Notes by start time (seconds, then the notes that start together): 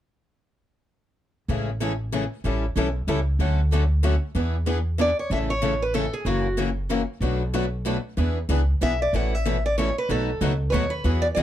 1.48 A1 C#3 E3 G#3 A3 C#4 E4 G#4 A4
1.80 C#3 E3 G#3 A3 C#4 E4 G#4 A4
2.12 C#3 E3 G#3 A3 C#4 E4 G#4 A4
2.44 A1 E3 G3 C#4 E4 A4
2.76 B1 E3 G3 C#4 E4 A4
3.07 C#2 E3 G3 C#4 E4 A4
3.39 D2 D3 F#3 A3 C#4 F#4 A4
3.71 D3 F#3 A3 C#4 F#4 A4
4.03 D3 F#3 A3 C#4 F#4 A4
4.35 E2 E3 B3 D4 G#4 B4
4.66 E3 B3 D4 G#4 B4
4.98 E3 B3 D4 G#4 B4 D5
5.19 C#5
5.30 A1 C#3 E3 A3 C#4 E4 A4 E5
5.50 C#5
5.62 C#3 E3 A3 C#4 E4 A4
5.82 B4
5.94 C#3 E3 A3 C#4 E4 A4
6.14 G#4
6.25 F#1 C#3 E3 F#3 A#3 C#4 E4 F#4 A#4
6.57 C#3 E3 F#3 A#3 C#4 E4 F#4 A#4
6.89 C#3 E3 F#3 A#3 C#4 E4 F#4 A#4
7.20 B1 B2 F#3 A3 D4 F#4 B4
7.53 B2 F#3 A3 D4 F#4 B4
7.85 B2 F#3 A3 D4 F#4 B4
8.17 E2 E3 B3 D4 G#4 B4
8.49 C#2 E3 B3 D4 G#4 B4
8.81 B1 E3 B3 D4 G#4 B4 E5
9.02 D5
9.13 A1 B2 E3 A3 C#4 E4 A4 B4 F#5
9.35 E5
9.45 B2 E3 A3 C#4 E4 A4 B4
9.66 D5
9.78 B2 E3 A3 C#4 E4 A4 B4 C#5
9.98 B4
10.09 B1 B2 F#3 A3 D#4 F#4 A4 B4
10.41 C#2 B2 F#3 A3 D#4 F#4 B4
10.70 D#2 B2 F#3 A3 D#4 F#4 B4 C#5
10.90 B4
11.04 E2 E3 F#3 B3 E4 F#4 G#4
11.22 D5
11.35 C#2 E3 F#3 B3 E4 F#4 G#4 E5